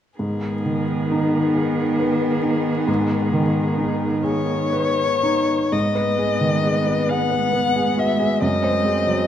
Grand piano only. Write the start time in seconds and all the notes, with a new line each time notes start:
0.19 G#2
0.65 D#3
1.11 D#4
1.55 G#4
1.99 B4
2.43 D#4
2.88 G#2
3.33 D#3
3.78 D#4
4.24 G#4
4.72 B4
5.23 D#4
5.72 G#2
5.95 B4
6.19 G#4
6.41 D#3
6.63 G#4
6.87 B4
7.09 G#4
7.31 B4
7.53 B3
7.76 G#4
7.98 F#4
8.19 G#4
8.42 F#2
8.64 C5
8.85 G#4
9.07 F#3